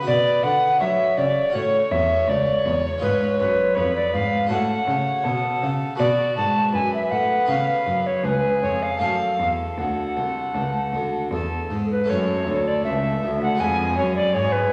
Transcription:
Already playing: violin B4
0.01 harpsichord B3 F#4 B4
0.06 harpsichord B2, cello B2, recorder D5
0.43 harpsichord D3, cello D3, recorder F#5
0.80 harpsichord F#3, cello F#3, violin C#5, recorder E5
1.17 harpsichord C#3, cello C#3, recorder D5
1.50 harpsichord C#4 F#4
1.55 cello A2, harpsichord A2, recorder C#5
1.91 cello E2, harpsichord E2, recorder E5
2.28 cello C#2, harpsichord C#2, recorder D5
2.66 cello E2, harpsichord E2
2.86 recorder C#5
2.98 harpsichord C#4 F4 G#4
3.02 cello G#2, harpsichord G#2, recorder B4
3.39 harpsichord F#2, cello F#2, recorder B4
3.75 harpsichord F2, cello F2, violin B4, recorder C#5
3.96 recorder D5
4.14 cello G#2, harpsichord G#2, recorder F5
4.46 harpsichord C#4 F#4 C#5, violin A4
4.51 cello A2, harpsichord A2, recorder F#5
4.87 cello C#3, harpsichord C#3, violin C#5
5.24 cello B2, harpsichord B2, violin A4
5.62 harpsichord C#3, cello C#3
5.95 harpsichord B3 F#4 D5, violin F#4, recorder D5
6.00 harpsichord B2, cello B2
6.37 harpsichord G#2, cello G#2, recorder A5
6.73 cello F#2, harpsichord F#2, violin B4, recorder G#5
6.94 recorder E5
7.11 cello A2, harpsichord A2, recorder F#5
7.45 cello C#3, harpsichord B3 C#4 C#5, recorder F5
7.50 harpsichord C#3
7.86 cello F#2, harpsichord F#2
8.07 recorder C#5
8.23 cello C#2, harpsichord C#2, violin G#4, recorder B4
8.62 cello F2, harpsichord F2, recorder C#5
8.83 recorder F5
8.98 cello F#2, harpsichord A3 C#4 C#5, violin A4, recorder F5
9.02 harpsichord F#2
9.40 cello E2, harpsichord E2
9.77 cello D2, harpsichord D2, recorder F#5
10.16 cello C2, harpsichord C2
10.55 cello C#2, harpsichord C#2
10.93 cello D2, harpsichord D2
11.31 cello E2, harpsichord E2, recorder A4
11.70 cello G#2, harpsichord G#2
11.91 recorder B4
12.04 harpsichord A3 C#4 C#5
12.09 harpsichord F#2, cello F#2, violin A4, recorder C#5
12.47 harpsichord D2, cello D2
12.68 recorder D5
12.84 cello C#2, harpsichord C#2, recorder E5
13.22 cello D2, harpsichord D2
13.42 recorder F#5
13.55 harpsichord G#3 C#4 B4
13.59 cello F2, harpsichord F2, violin G#4, recorder G#5
13.97 cello F#2, harpsichord F#2, recorder C#5
14.16 recorder D5
14.34 cello G#2, harpsichord G#2, violin G#4, recorder C#5
14.52 recorder B4

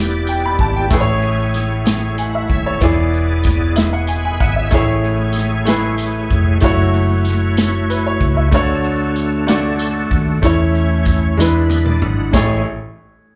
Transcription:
Already playing: fingered electric bass E1, upright piano E3 B3 E4 G4 D5, tonewheel organ B3 E4 G4 D5
0.27 upright piano G5, closed hi-hat, tambourine
0.45 upright piano B5
0.59 fingered electric bass G#1, upright piano A5, kick, closed hi-hat
0.76 upright piano G5
0.90 fingered electric bass A1, upright piano A2 A3 E4 G#4 B4, tonewheel organ A3 E4 G#4 C#5, kick, closed hi-hat, tambourine
1.00 upright piano C#5
1.22 closed hi-hat
1.54 snare, closed hi-hat, tambourine
1.85 snare, closed hi-hat, tambourine
2.18 tonewheel organ F#5, upright piano G#5, closed hi-hat, tambourine
2.35 upright piano E5
2.50 fingered electric bass D#1, tonewheel organ C#5 E5, kick, closed hi-hat
2.66 tonewheel organ A4 C#5, upright piano C#5
2.81 fingered electric bass E1, upright piano E3 B3 E4 G#4 D5, tonewheel organ B3 E4 G#4 D5, kick, closed hi-hat, tambourine
3.14 closed hi-hat
3.43 kick, snare, closed hi-hat, tambourine
3.76 upright piano E5, snare, closed hi-hat, tambourine
3.93 upright piano F#5, tonewheel organ C#6
4.07 tonewheel organ G#5 B5, upright piano G#5, closed hi-hat, tambourine
4.25 upright piano G#5
4.40 fingered electric bass G#1, tonewheel organ E5 G#5, upright piano F#5, kick, closed hi-hat
4.56 tonewheel organ C#5 E5, upright piano E5
4.70 fingered electric bass A1, upright piano A2 A3 E4 G#4 C#5, tonewheel organ A3 E4 G#4 C#5, kick, closed hi-hat, tambourine
5.04 closed hi-hat
5.33 closed hi-hat, tambourine
5.37 snare
5.65 upright piano A3 E4 G#4 B4, snare, closed hi-hat, tambourine
5.98 closed hi-hat, tambourine
6.31 fingered electric bass F1, kick, closed hi-hat
6.60 fingered electric bass F#1, upright piano A3 E4 F#4 C#5, tonewheel organ A3 E4 F#4 C#5, kick, closed hi-hat, tambourine
6.94 closed hi-hat
7.25 snare, closed hi-hat, tambourine
7.57 snare, closed hi-hat, tambourine
7.89 upright piano B4, closed hi-hat, tambourine
8.06 upright piano C#5
8.21 fingered electric bass C#2, kick, closed hi-hat
8.37 upright piano E5
8.51 fingered electric bass D2, upright piano D3 A3 D4 F#4 C#5, tonewheel organ A3 D4 F#4 A4, kick, closed hi-hat, tambourine
8.84 closed hi-hat
9.16 closed hi-hat, tambourine
9.47 upright piano A3 D4 F#4 D5, snare, closed hi-hat, tambourine
9.79 closed hi-hat, tambourine
10.11 fingered electric bass D#2, kick, closed hi-hat
10.42 fingered electric bass E2, upright piano E3 A3 C#4 E4 C#5, tonewheel organ A3 C#4 E4 C#5, kick, closed hi-hat, tambourine
10.75 closed hi-hat
11.05 kick, closed hi-hat, tambourine
11.37 fingered electric bass E2, upright piano E3 G#3 D4 E4 B4, tonewheel organ G#3 D4 E4 B4, snare, tambourine
11.69 tonewheel organ B4, high tom, tambourine
11.86 tonewheel organ D5, mid tom
12.02 fingered electric bass G#1, tonewheel organ F#5, mid tom
12.32 upright piano A1 A3 E4 G#4 C#5, fingered electric bass A1, tonewheel organ A3 E4 G#4 C#5, kick, snare, tambourine

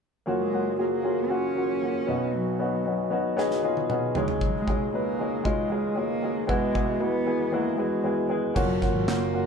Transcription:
0.26 upright piano F#1 F#2 A#3 C#4 F4 F#4, cello F#3
0.41 cello G#3
0.52 upright piano A#3 C#4 F4 F#4
0.77 upright piano A#3 C#4 F4 G#4, cello A#3
0.91 cello A#3
1.03 upright piano A#3 C#4 F4 G#4
1.29 upright piano A#3 C#4 F4 F#4, cello C#4
1.56 upright piano A#3 C#4 F4 F#4
1.82 upright piano A#3 C#4 F4 F#4
2.07 upright piano B1 B2 B3 C#4 D#4 F#4
2.34 cello F#3
2.59 upright piano B3 C#4 D#4 F#4
2.85 upright piano B3 C#4 D#4 F#4
3.10 upright piano B3 C#4 D#4 F#4
3.37 upright piano B3 C#4 D#4 G#4, snare
3.51 snare
3.63 upright piano B3 C#4 D#4 F4
3.77 high tom
3.89 upright piano B3 C#4 D#4 F#4, mid tom
4.15 upright piano C#2 C#3 G#3 C#4 D#4 G#4, floor tom
4.28 floor tom
4.41 cello F#3, kick
4.57 cello G#3
4.67 upright piano G#3 C#4 D#4 G#4, kick
4.93 upright piano G#3 C#4 D#4 B4, cello A#3
5.19 upright piano G#3 C#4 D#4 G#4
5.44 upright piano G#3 C#4 D#4 F4, cello G#3, kick
5.70 upright piano G#3 C#4 D#4 G#4
5.96 upright piano G#3 C#4 D#4 G#4, cello A#3
6.22 upright piano G#3 C#4 D#4 G#4
6.47 upright piano E2 E3 G#3 B3 E4 F#4, cello G#3, kick
6.74 upright piano G#3 B3 E4 F#4, kick
7.00 upright piano G#3 B3 E4 F#4, cello B3
7.25 upright piano G#3 B3 E4 G#4
7.52 upright piano G#3 B3 E4 F#4, cello A#3
7.78 upright piano G#3 B3 E4 G#4, cello G#3
8.04 upright piano G#3 B3 E4 G#4
8.29 upright piano G#3 B3 E4 G#4
8.54 picked electric bass F#1, upright piano A#3 C#4 F4 F#4, kick, crash
8.59 cello F#3
8.81 cello F#3, upright piano A#3 C#4 F4 F#4, kick, snare
8.95 picked electric bass G#1
9.07 picked electric bass F#1, upright piano A#3 C#4 F4 F#4, cello A#3, snare, clap
9.33 upright piano A#3 C#4 F4 F#4

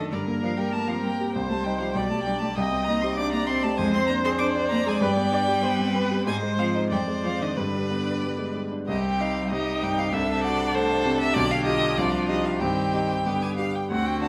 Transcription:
Already playing: grand piano F#2 A3 D4 A4, cello D#3, violin A4, viola A4
0.12 grand piano G2, cello D3, violin A#4 D5, viola A#4
0.27 grand piano A#3
0.42 cello F3, grand piano D4, violin F5
0.57 cello G3, grand piano G4, violin G5
0.72 cello A3, grand piano A#3, violin A5
0.87 cello F3, grand piano C4, violin F5
1.00 cello G3, grand piano A#3, violin G5
1.20 grand piano G4
1.35 grand piano C2, violin C5, viola C5
1.48 grand piano G3, cello A3, violin A5
1.63 cello G3, grand piano D#4, violin G5
1.79 cello F3, grand piano G4, violin F5
1.92 grand piano B1, cello G3, violin D5 G5
1.96 viola D5
2.10 grand piano G3, cello A3, violin A5
2.23 cello G3, violin G5
2.27 grand piano D4
2.40 cello A3, grand piano G4, violin A5
2.55 grand piano C2, cello G3, violin D#5 G5, viola D#5
2.73 grand piano C4
2.84 cello A#3, violin A#5
2.89 grand piano D#4
3.01 cello C4, grand piano G4, violin C6
3.15 grand piano C4, cello D4, violin D5 D6, viola D5
3.32 cello A#3, grand piano D4, violin A#5
3.47 cello C4, grand piano C4, violin C6
3.63 cello A3, grand piano G4, violin A5
3.76 grand piano F2, cello G#3, violin C5 G#5, viola C5
3.94 cello C4, grand piano C4, violin C6
4.07 grand piano D4, violin A#5
4.11 cello A#3
4.25 cello C4, grand piano G#4, violin C6
4.38 grand piano C4, cello D4, violin D5 D6
4.54 grand piano D4
4.70 cello A#3, grand piano C4, violin A#5
4.86 cello G#3, grand piano G#4, violin G#5
5.00 grand piano G2, cello G3, viola B4, violin G5
5.17 grand piano B3
5.32 grand piano D4, viola D5
5.48 grand piano G4
5.62 grand piano B3, violin B4, viola C5
5.79 grand piano C4
5.95 grand piano B3, viola B4
6.11 grand piano G4
6.26 grand piano G#2, cello G#3, viola C5, violin C5 G#5
6.43 grand piano G#3
6.58 cello F3, grand piano C4, violin F5
6.75 grand piano D#4
6.90 grand piano F2, cello G3, violin C5 G5, viola D5
7.08 grand piano G#3
7.23 cello F3, grand piano C4, violin F5
7.39 cello D#3, grand piano D4, violin D#5
7.56 grand piano G2, cello D3, violin B4 D5, viola B4
7.75 grand piano G3
7.91 grand piano B3
8.06 grand piano D4
8.23 grand piano G3
8.38 grand piano G#3
8.55 grand piano G3
8.72 grand piano D4
8.88 grand piano C2, cello G3, viola C4, violin G4 D#5
9.06 violin G5
9.20 grand piano D#4, violin F5
9.51 cello C3, grand piano G3, viola D#4, violin G4 D#5
9.82 grand piano G2, violin G5
9.99 violin F5
10.12 grand piano C2, viola D4, violin A4 E5
10.44 grand piano F#4, violin D5
10.74 grand piano A3, violin A4 C5
11.05 grand piano C3
11.20 violin E5
11.34 grand piano B1, cello D3, violin G4 D5
11.51 violin F5
11.65 grand piano F4 G4, violin D#5
11.97 grand piano C2, cello F3, viola D4, violin F4 D5
12.29 grand piano D#4 G4, violin D#5
12.45 violin F5
12.59 grand piano G2, cello D#3, viola C4, violin G4 G5
12.94 grand piano D#4 G4
13.25 grand piano G2, cello D3, viola B3, violin G4
13.42 violin G#5
13.57 grand piano D4 G4, violin F5
13.75 violin G5
13.90 grand piano D2, cello D3, viola C4, violin F#4 F#5
14.06 violin G5
14.22 grand piano D4 F#4, violin A5

